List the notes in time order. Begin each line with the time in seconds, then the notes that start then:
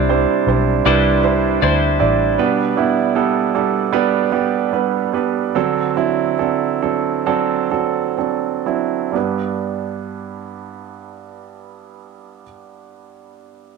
Already playing: C2 C3 G3 D4 E4 G4 C5
0.09 G3 D4 E4 C5
0.47 B1 G3 D4 E4 C5
0.86 C2 G3 D4 E4 B4 C5
1.23 G3 D4 E4 C5
1.62 D2 G3 D4 E4 C5
1.99 A1 G3 D4 E4 D5
2.38 B2 G3 B3 D4 B4
2.77 G3 B3 D4 E4
3.15 G3 B3 D4 A4
3.55 G3 B3 D4 A4
3.93 G3 B3 D4 B4
4.32 G3 B3 D4 G4
4.73 G3 B3 D4 B4
5.13 G3 B3 D4 B4
5.55 D3 F#3 C4 D4 A4
5.96 F#3 C4 D4 E4
6.38 F#3 C4 D4 A4
6.82 F#3 C4 D4 A4
7.26 F#3 C4 D4 A4
7.71 F#3 C4 D4 A4
8.18 F#3 C4 D4 A4
8.66 F#3 C4 D4 E4
9.12 G2 G3 B3 D4 B4